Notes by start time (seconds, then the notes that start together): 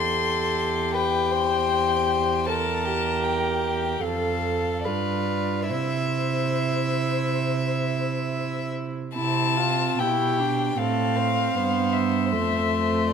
Already playing: E2 G4 A4 C6
0.94 B4 G5
1.32 C5
2.46 A4 A#4 A5
2.85 G4
3.23 G5
4.02 F2 A4 F5
4.84 G2 F4 B4 D5
5.70 C3 E4 C5 E5
9.15 C3 C4 E4 A5
9.57 F4
9.98 B2 E4 G4 G5
10.40 D4
10.78 A2 C4 A4 F5
11.16 C5
11.55 G2 B3
11.92 E5
12.32 F2 A3 C5